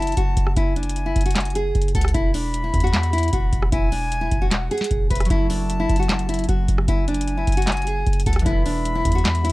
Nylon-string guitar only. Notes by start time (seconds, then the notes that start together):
Already playing: E4
0.17 F#4
0.57 E4
0.76 D4
1.06 E4
1.26 F#4
1.55 G#4
1.95 A4
2.14 E4
2.34 D4
2.64 E4
2.84 F#4
3.13 E4
3.33 F#4
3.72 E4
3.92 D4
4.21 E4
4.42 F#4
4.71 G#4
5.10 B4
5.30 E4
5.50 D4
5.80 E4
5.99 F#4
6.29 E4
6.49 F#4
6.88 E4
7.08 D4
7.37 E4
7.57 F#4
7.87 G#4
8.26 A4
8.46 E4
8.66 D4
8.95 E4
9.15 F#4
9.44 E4